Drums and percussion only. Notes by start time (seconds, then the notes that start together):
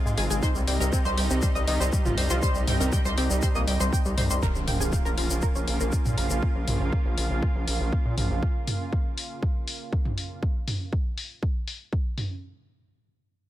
0.07 shaker
0.18 open hi-hat
0.31 shaker
0.43 kick, shaker
0.55 shaker
0.68 open hi-hat
0.81 shaker
0.93 kick, shaker
1.05 shaker
1.18 open hi-hat
1.30 shaker
1.42 kick, shaker
1.56 shaker
1.68 open hi-hat
1.81 shaker
1.93 kick, shaker
2.05 mid tom, shaker
2.18 open hi-hat
2.30 shaker
2.42 kick, shaker
2.55 shaker
2.68 mid tom, open hi-hat
2.81 shaker
2.92 kick, shaker
3.05 shaker
3.18 open hi-hat
3.30 shaker
3.42 kick, shaker
3.55 shaker
3.68 open hi-hat
3.81 shaker
3.93 kick, shaker
4.05 shaker
4.18 mid tom, open hi-hat
4.30 shaker
4.43 kick, shaker
4.55 shaker
4.68 mid tom, open hi-hat
4.81 shaker
4.92 kick, shaker
5.06 shaker
5.18 open hi-hat
5.30 shaker
5.42 kick, shaker
5.55 shaker
5.68 open hi-hat
5.80 shaker
5.92 kick, shaker
6.05 mid tom, shaker
6.18 open hi-hat
6.30 shaker
6.43 kick
6.68 mid tom, open hi-hat
6.93 kick
7.18 open hi-hat
7.43 kick
7.68 open hi-hat
7.93 kick
8.18 mid tom, open hi-hat
8.43 kick
8.68 mid tom, open hi-hat
8.93 kick
9.18 open hi-hat
9.43 kick
9.68 open hi-hat
9.93 kick
10.05 mid tom
10.18 open hi-hat
10.43 kick
10.68 mid tom, open hi-hat
10.93 kick
11.18 open hi-hat
11.43 kick
11.68 open hi-hat
11.93 kick
12.18 mid tom, open hi-hat